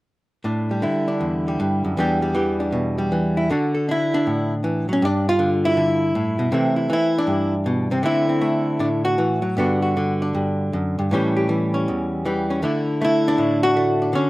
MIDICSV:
0, 0, Header, 1, 2, 480
1, 0, Start_track
1, 0, Key_signature, 2, "major"
1, 0, Tempo, 383387
1, 568, Time_signature, 4, 2, 24, 8
1, 4880, Tempo, 375940
1, 9680, Tempo, 384862
1, 13520, Tempo, 378072
1, 18044, End_track
2, 0, Start_track
2, 0, Title_t, "Hollow-body jazz guitar"
2, 0, Program_c, 0, 26
2, 553, Note_on_c, 0, 45, 46
2, 562, Note_on_c, 0, 62, 38
2, 888, Note_on_c, 0, 55, 38
2, 1028, Note_on_c, 0, 50, 45
2, 1041, Note_on_c, 0, 64, 43
2, 1049, Note_off_c, 0, 45, 0
2, 1345, Note_off_c, 0, 62, 0
2, 1350, Note_on_c, 0, 62, 42
2, 1509, Note_on_c, 0, 40, 41
2, 1837, Note_off_c, 0, 55, 0
2, 1852, Note_on_c, 0, 55, 42
2, 1994, Note_off_c, 0, 40, 0
2, 1999, Note_on_c, 0, 43, 51
2, 2306, Note_off_c, 0, 43, 0
2, 2311, Note_on_c, 0, 42, 46
2, 2465, Note_off_c, 0, 42, 0
2, 2470, Note_on_c, 0, 40, 58
2, 2474, Note_off_c, 0, 55, 0
2, 2476, Note_off_c, 0, 50, 0
2, 2483, Note_on_c, 0, 52, 46
2, 2487, Note_on_c, 0, 55, 45
2, 2495, Note_off_c, 0, 62, 0
2, 2500, Note_off_c, 0, 64, 0
2, 2500, Note_on_c, 0, 62, 43
2, 2505, Note_on_c, 0, 67, 55
2, 2769, Note_off_c, 0, 55, 0
2, 2784, Note_on_c, 0, 55, 46
2, 2925, Note_off_c, 0, 52, 0
2, 2929, Note_off_c, 0, 67, 0
2, 2937, Note_on_c, 0, 52, 49
2, 2950, Note_on_c, 0, 67, 42
2, 3240, Note_off_c, 0, 62, 0
2, 3255, Note_on_c, 0, 62, 43
2, 3411, Note_on_c, 0, 47, 47
2, 3721, Note_off_c, 0, 55, 0
2, 3736, Note_on_c, 0, 55, 46
2, 3890, Note_off_c, 0, 52, 0
2, 3900, Note_off_c, 0, 47, 0
2, 3905, Note_on_c, 0, 52, 50
2, 4216, Note_off_c, 0, 67, 0
2, 4221, Note_on_c, 0, 64, 49
2, 4369, Note_off_c, 0, 62, 0
2, 4375, Note_off_c, 0, 52, 0
2, 4387, Note_off_c, 0, 40, 0
2, 4388, Note_on_c, 0, 50, 57
2, 4392, Note_off_c, 0, 55, 0
2, 4397, Note_on_c, 0, 62, 37
2, 4401, Note_on_c, 0, 66, 38
2, 4405, Note_off_c, 0, 64, 0
2, 4409, Note_on_c, 0, 69, 31
2, 4684, Note_off_c, 0, 69, 0
2, 4689, Note_on_c, 0, 69, 36
2, 4862, Note_off_c, 0, 62, 0
2, 4867, Note_on_c, 0, 62, 47
2, 4894, Note_off_c, 0, 69, 0
2, 4899, Note_on_c, 0, 64, 70
2, 5187, Note_off_c, 0, 62, 0
2, 5193, Note_on_c, 0, 62, 70
2, 5352, Note_on_c, 0, 45, 44
2, 5689, Note_off_c, 0, 64, 0
2, 5821, Note_off_c, 0, 50, 0
2, 5826, Note_on_c, 0, 52, 50
2, 6139, Note_off_c, 0, 52, 0
2, 6144, Note_on_c, 0, 54, 46
2, 6154, Note_off_c, 0, 62, 0
2, 6196, Note_on_c, 0, 61, 66
2, 6295, Note_off_c, 0, 45, 0
2, 6304, Note_off_c, 0, 66, 0
2, 6314, Note_off_c, 0, 54, 0
2, 6316, Note_on_c, 0, 43, 56
2, 6340, Note_off_c, 0, 61, 0
2, 6352, Note_on_c, 0, 62, 81
2, 6647, Note_off_c, 0, 62, 0
2, 6656, Note_on_c, 0, 65, 86
2, 6785, Note_on_c, 0, 50, 48
2, 7121, Note_on_c, 0, 64, 74
2, 7256, Note_off_c, 0, 50, 0
2, 7272, Note_on_c, 0, 50, 45
2, 7607, Note_off_c, 0, 65, 0
2, 7753, Note_off_c, 0, 50, 0
2, 7759, Note_on_c, 0, 45, 48
2, 8056, Note_off_c, 0, 45, 0
2, 8061, Note_on_c, 0, 47, 51
2, 8212, Note_off_c, 0, 43, 0
2, 8220, Note_off_c, 0, 47, 0
2, 8226, Note_on_c, 0, 48, 58
2, 8232, Note_on_c, 0, 52, 41
2, 8239, Note_off_c, 0, 64, 0
2, 8240, Note_on_c, 0, 57, 40
2, 8250, Note_on_c, 0, 60, 40
2, 8257, Note_on_c, 0, 64, 41
2, 8534, Note_off_c, 0, 64, 0
2, 8539, Note_on_c, 0, 64, 35
2, 8704, Note_off_c, 0, 52, 0
2, 8709, Note_off_c, 0, 48, 0
2, 8709, Note_on_c, 0, 52, 51
2, 8747, Note_off_c, 0, 64, 0
2, 8753, Note_on_c, 0, 64, 74
2, 9072, Note_off_c, 0, 60, 0
2, 9077, Note_on_c, 0, 62, 77
2, 9185, Note_on_c, 0, 43, 48
2, 9532, Note_off_c, 0, 64, 0
2, 9682, Note_on_c, 0, 47, 48
2, 9992, Note_off_c, 0, 47, 0
2, 9998, Note_on_c, 0, 48, 49
2, 10001, Note_off_c, 0, 62, 0
2, 10006, Note_on_c, 0, 60, 56
2, 10129, Note_off_c, 0, 57, 0
2, 10130, Note_off_c, 0, 43, 0
2, 10133, Note_off_c, 0, 52, 0
2, 10142, Note_off_c, 0, 60, 0
2, 10144, Note_on_c, 0, 50, 54
2, 10148, Note_on_c, 0, 57, 31
2, 10157, Note_on_c, 0, 60, 37
2, 10159, Note_off_c, 0, 48, 0
2, 10177, Note_on_c, 0, 64, 76
2, 10455, Note_off_c, 0, 60, 0
2, 10470, Note_on_c, 0, 60, 36
2, 10609, Note_off_c, 0, 57, 0
2, 10624, Note_on_c, 0, 57, 52
2, 11098, Note_on_c, 0, 45, 42
2, 11103, Note_off_c, 0, 60, 0
2, 11108, Note_on_c, 0, 62, 67
2, 11201, Note_off_c, 0, 62, 0
2, 11408, Note_off_c, 0, 64, 0
2, 11413, Note_on_c, 0, 66, 74
2, 11576, Note_off_c, 0, 50, 0
2, 11581, Note_on_c, 0, 52, 49
2, 11875, Note_off_c, 0, 52, 0
2, 11880, Note_on_c, 0, 54, 47
2, 12052, Note_off_c, 0, 57, 0
2, 12061, Note_off_c, 0, 54, 0
2, 12062, Note_on_c, 0, 43, 54
2, 12069, Note_off_c, 0, 66, 0
2, 12070, Note_off_c, 0, 45, 0
2, 12075, Note_on_c, 0, 50, 44
2, 12079, Note_on_c, 0, 59, 44
2, 12088, Note_on_c, 0, 62, 41
2, 12097, Note_on_c, 0, 66, 50
2, 12367, Note_off_c, 0, 66, 0
2, 12382, Note_on_c, 0, 66, 45
2, 12547, Note_off_c, 0, 50, 0
2, 12562, Note_on_c, 0, 50, 51
2, 12860, Note_off_c, 0, 62, 0
2, 12875, Note_on_c, 0, 62, 45
2, 13017, Note_off_c, 0, 43, 0
2, 13032, Note_on_c, 0, 43, 44
2, 13511, Note_off_c, 0, 43, 0
2, 13516, Note_on_c, 0, 42, 51
2, 13833, Note_off_c, 0, 42, 0
2, 13838, Note_on_c, 0, 43, 51
2, 13977, Note_off_c, 0, 66, 0
2, 13982, Note_off_c, 0, 62, 0
2, 13985, Note_off_c, 0, 59, 0
2, 13997, Note_on_c, 0, 45, 54
2, 14004, Note_off_c, 0, 43, 0
2, 14004, Note_off_c, 0, 50, 0
2, 14012, Note_on_c, 0, 52, 47
2, 14019, Note_on_c, 0, 55, 48
2, 14028, Note_on_c, 0, 61, 48
2, 14040, Note_on_c, 0, 67, 53
2, 14303, Note_off_c, 0, 67, 0
2, 14318, Note_on_c, 0, 67, 43
2, 14472, Note_off_c, 0, 52, 0
2, 14477, Note_on_c, 0, 52, 51
2, 14790, Note_off_c, 0, 61, 0
2, 14795, Note_on_c, 0, 61, 49
2, 14963, Note_off_c, 0, 45, 0
2, 14974, Note_on_c, 0, 40, 46
2, 15435, Note_off_c, 0, 55, 0
2, 15443, Note_off_c, 0, 52, 0
2, 15448, Note_on_c, 0, 52, 53
2, 15456, Note_on_c, 0, 55, 47
2, 15758, Note_off_c, 0, 61, 0
2, 15763, Note_on_c, 0, 61, 48
2, 15911, Note_off_c, 0, 67, 0
2, 15915, Note_off_c, 0, 52, 0
2, 15920, Note_on_c, 0, 50, 58
2, 15925, Note_off_c, 0, 55, 0
2, 15930, Note_on_c, 0, 57, 38
2, 15931, Note_off_c, 0, 61, 0
2, 15935, Note_off_c, 0, 40, 0
2, 15936, Note_on_c, 0, 62, 41
2, 15948, Note_on_c, 0, 64, 42
2, 16398, Note_off_c, 0, 57, 0
2, 16413, Note_on_c, 0, 57, 57
2, 16418, Note_off_c, 0, 64, 0
2, 16452, Note_on_c, 0, 64, 81
2, 16745, Note_off_c, 0, 62, 0
2, 16750, Note_on_c, 0, 62, 80
2, 16879, Note_on_c, 0, 45, 51
2, 17192, Note_off_c, 0, 64, 0
2, 17197, Note_on_c, 0, 66, 87
2, 17352, Note_off_c, 0, 57, 0
2, 17367, Note_on_c, 0, 57, 51
2, 17671, Note_off_c, 0, 62, 0
2, 17686, Note_on_c, 0, 62, 39
2, 17813, Note_off_c, 0, 50, 0
2, 17822, Note_off_c, 0, 57, 0
2, 17828, Note_on_c, 0, 50, 58
2, 17835, Note_off_c, 0, 45, 0
2, 17854, Note_off_c, 0, 62, 0
2, 17859, Note_on_c, 0, 61, 78
2, 18044, Note_off_c, 0, 50, 0
2, 18044, Note_off_c, 0, 61, 0
2, 18044, Note_off_c, 0, 66, 0
2, 18044, End_track
0, 0, End_of_file